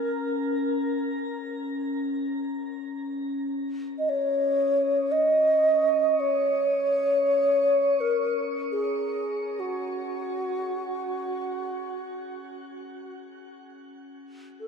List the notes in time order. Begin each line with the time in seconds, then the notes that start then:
Already playing: C#4 A#4
3.99 D#5
4.09 C#5
5.12 D#5
6.20 C#5
8.00 A#4
8.72 G#4
9.60 F#4
14.60 A#4